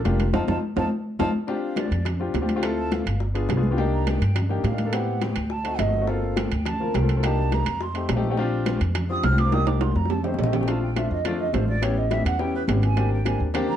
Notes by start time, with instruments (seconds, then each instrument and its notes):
0.04 upright bass F1, grand piano A#3 D4 F4 G4, high bongo, low bongo, high conga, high timbale
0.19 high conga, high timbale
0.33 upright bass F2, grand piano C4 D#4 F4, flute A5, low bongo, high conga, high timbale
0.48 upright bass F2, grand piano C4 D#4 F4, flute A5, low bongo, high conga, high timbale
0.76 upright bass F2, grand piano C4 D#4 F4, flute A5, low bongo, high conga, high timbale
1.19 upright bass F2, grand piano C4 D#4 F4, flute A5, low bongo, high conga, high timbale
1.47 grand piano C4 D4 F4 G4, high bongo, high conga
1.62 flute F5, high conga
1.76 flute D5, high bongo, high conga, high timbale
1.91 upright bass F2, high conga, high timbale
2.05 high bongo, high conga, low conga, high timbale
2.20 grand piano C4 D4 F4 G4, high conga
2.34 upright bass D2, high bongo, low bongo, high conga, high timbale, low timbale
2.41 grand piano C4 D4 F4 G4
2.49 high conga, high timbale
2.55 grand piano C4 D4 F4 G4
2.62 grand piano C4 E4 F4 A4, high bongo, high conga, high timbale
2.78 flute A5, high bongo, high conga
2.92 flute F5, high bongo, high conga, high timbale
3.06 upright bass G1, high conga, high timbale
3.20 high bongo, high conga
3.34 grand piano B3 D4 F4 G#4, high bongo, high conga, high timbale
3.49 upright bass C2, high bongo, low bongo, high conga, high timbale, low timbale
3.56 grand piano B3 D4 F4 G#4
3.63 high conga
3.70 grand piano B3 D4 F4 G4
3.77 grand piano A#3 D4 D#4 G4, high bongo, high conga
3.92 flute A#5, high conga
4.07 flute G5, high bongo, high conga, high timbale
4.21 upright bass G2, high conga, high timbale
4.36 high bongo, high conga, low conga, high timbale
4.49 grand piano A#3 D4 D#4 G4, high conga, low conga
4.64 upright bass A2, flute F5, high bongo, low bongo, high conga, high timbale, low timbale
4.71 grand piano A#3 D4 D#4 G4
4.78 high conga, high timbale
4.85 grand piano A#3 D4 D#4 A4
4.92 grand piano B3 C4 E4 G4, flute F#5, high bongo, high conga, high timbale
5.07 high bongo, high conga
5.21 flute G5, high bongo, high conga, high timbale
5.36 upright bass D2, high bongo, high conga, high timbale
5.50 flute A5, high bongo, high conga
5.64 grand piano A3 C4 D#4 F#4, high bongo, high conga, high timbale
5.79 upright bass G1, flute D#5, high bongo, low bongo, high conga, high timbale, low timbale
5.85 grand piano A3 C4 D#4 F#4
5.94 high conga
6.00 grand piano A3 C4 D#4 F#4
6.07 grand piano A#3 C4 F4 A4, flute F5, high bongo, high conga
6.23 high conga
6.36 flute G5, high bongo, high conga, high timbale
6.51 upright bass D2, high conga, high timbale
6.65 flute A5, high bongo, high conga, low conga, high timbale
6.80 grand piano A#3 C4 F4 A#4, high conga, low conga
6.94 upright bass C2, flute G5, high bongo, low bongo, high conga, high timbale, low timbale
7.01 grand piano A#3 C4 F4 A4
7.09 high conga, high timbale
7.16 grand piano A#3 C4 F4 A4
7.23 grand piano A#3 D4 D#4 G4, flute A5, high bongo, high conga, high timbale
7.37 high bongo, high conga
7.52 flute A#5, high bongo, high conga, high timbale
7.66 upright bass F2, high bongo, high conga, high timbale
7.81 flute C6, high bongo, high conga
7.94 grand piano A3 C4 D#4 G4, high bongo, high conga, high timbale
8.09 upright bass A#1, high bongo, low bongo, high conga, high timbale, low timbale
8.15 grand piano A3 C4 D#4 G4
8.24 high conga
8.30 grand piano A3 C4 D#4 G4
8.37 grand piano C4 D4 F4 G4, high bongo, high conga
8.52 high conga
8.66 high bongo, high conga, high timbale
8.81 upright bass F2, high conga, high timbale
8.95 high bongo, high conga, low conga, high timbale
9.09 grand piano C4 D4 F4 G4, flute D#6, high conga
9.23 upright bass C2, flute F6, high bongo, low bongo, high conga, high timbale, low timbale
9.31 grand piano C4 D4 F4 G4
9.38 flute D6, high conga, high timbale
9.45 grand piano C4 D4 F4 A#4
9.52 grand piano A#3 D4 D#4 G4, flute D#6, high bongo, high conga, high timbale
9.66 flute D6, high bongo, high conga, high timbale
9.81 flute C6, high bongo, high conga, high timbale
9.95 upright bass F2, flute A#5, high bongo
10.05 high bongo
10.10 flute A5, low conga, low timbale
10.23 grand piano A3 C4 D#4 G4, flute C5, low bongo, low conga, low timbale
10.34 low bongo
10.39 upright bass A#1, flute D#5, low conga, low timbale
10.44 grand piano A3 C4 D#4 G4, low bongo
10.53 flute G5, low bongo, low conga, low timbale
10.59 grand piano A3 C4 D#4 G4, low bongo
10.67 grand piano A3 C4 D4 F4, flute A5, high bongo, high conga, high timbale
10.82 flute G5, high bongo, high conga
10.96 grand piano A3 C4 D4 F4, flute E5, high bongo, high conga, high timbale, low timbale
11.11 upright bass F2, flute D#5, high bongo, high conga
11.24 grand piano A3 C4 D4 F4, flute D5, high bongo, high conga, low conga, high timbale
11.39 flute D#5, high bongo, high conga, low conga
11.53 upright bass A1, grand piano A3 C4 D4 F4, flute C5, high bongo, low bongo, high conga, high timbale, low timbale
11.68 flute D5, high conga
11.81 grand piano B3 C#4 E4 G4, flute C#5, high bongo, high conga, high timbale
11.97 flute D#5, high bongo, high conga
12.10 grand piano B3 C#4 E4 G4, flute E5, high bongo, high conga, high timbale, low timbale
12.25 upright bass E2, flute F#5, high bongo, high conga, high timbale
12.39 grand piano B3 C#4 E4 G4, flute G5, high bongo, high conga
12.53 flute B4, high bongo, high conga
12.67 upright bass G#1, grand piano B3 C#4 E4 G4, high bongo, low bongo, high conga, high timbale, low timbale
12.82 flute G#5, high conga, high timbale
12.96 grand piano A#3 C4 D4 G4, high bongo, high conga, high timbale
13.11 flute G5, high bongo, high conga
13.25 grand piano A#3 C4 D4 G4, flute G#5, high bongo, high conga, high timbale, low timbale
13.40 upright bass D#2, high bongo, high conga
13.54 grand piano A#3 C4 D4 G4, high bongo, high conga, low conga, high timbale
13.68 flute A#5, high bongo, high conga, low conga